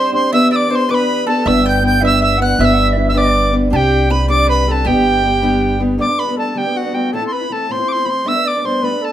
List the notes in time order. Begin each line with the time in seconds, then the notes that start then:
Already playing: G3 C4 D4 G4 C5 C6
0.12 C4 D4 G4 C5 C6
0.32 E3 B3 D4 G4 B4 E5 E6
0.51 D5 E6
0.56 D6
0.68 B3 D4 G4 B4 C5 D6
0.75 C6
0.89 E3 B3 D4 G4 B4 D6
0.94 B5
1.26 B3 D4 G4 A4 B4 A5
1.45 G1 G3 B3 D4 E4 B4 E5 E6
1.64 G5 G6
1.82 B3 D4 E4 B4 G5 G6
2.01 G3 B3 D4 E4 B4 E5
2.06 E6
2.19 E5
2.23 E6
2.38 B3 D4 E4 B4 F#5
2.42 F#5 F#6
2.58 G1 G3 B3 D4 E4 B4 E5 F#6
2.65 E6
2.74 F#5
2.78 E5
2.93 B3 D4 D5
2.97 E4 B4 E5
3.09 G3 E5 E6
3.14 B3 D4 E4 B4 D5 D6
3.51 B3 D4 E4 B4
3.70 C2 C4 D4 G4 C5 A5
3.76 G5
4.09 C4 D4 G4 B4 C5 B5
4.28 C4 D4 G4 C5 D5 D6
4.47 B4 B5
4.66 C4 D4 G4 A4 C5 B5
4.72 A5
4.85 G1 G3 B3 D4 G4 G5
5.24 G3 B3 D4 G4
5.41 G3 B3 D4 G4
5.79 G3 B3 D4 G4
5.98 G2 D3 G3 A3 B3 D4 D5 D6
6.08 G3 A3 B3 D4
6.19 B4 B5
6.25 G3 A3 B3 D4
6.36 G3 A3 B3 D4 A4 A5
6.50 G2 A5
6.54 D3 G3 A3 B3 D4 G4 G5
6.64 G3 A3 B3 D4
6.75 F#4 F#5
6.84 G3 A3 B3 D4
6.93 G3 A3 B3 D4 G5
7.13 A2 E3 A3 C4 E4 A4 A5
7.22 A3 C4 E4
7.27 C6
7.32 B4 B5
7.41 A3 C4 E4
7.50 E3 A3 C4 E4 A4 A5
7.69 A2 E3 A3 C4 E4 C5 C6
7.79 A3 C4 E4
7.88 C6 D6
7.96 A3 C4 E4
8.05 E3 A3 C4 E4 B5
8.09 C6
8.24 G3 A3 B3 D4 E5
8.28 E6
8.35 A3 B3 D4
8.46 D5 D6
8.55 A3 B3 D4
8.64 G3 A3 B3 D4 C5 C6
8.82 G3 A3 B3 D4 B4 B5
8.92 A3 B3 D4
9.02 A4 A5